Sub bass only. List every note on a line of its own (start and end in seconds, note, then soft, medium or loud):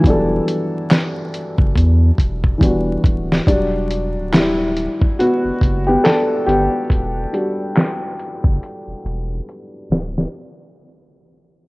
0.04 0.40 E1 loud
1.58 1.72 F#1 loud
1.76 2.11 E2 loud
2.19 2.54 E1 medium
2.61 2.97 E1 medium
3.04 3.40 D1 medium
3.47 4.17 E1 loud
4.16 4.87 D1 medium
5.44 5.51 F#1 soft
5.61 5.97 F#1 medium
6.47 6.68 G1 medium
6.90 7.26 E1 loud
8.44 8.58 F#1 medium
8.87 8.94 E1 soft
9.04 9.40 E1 medium
9.90 10.26 D1 medium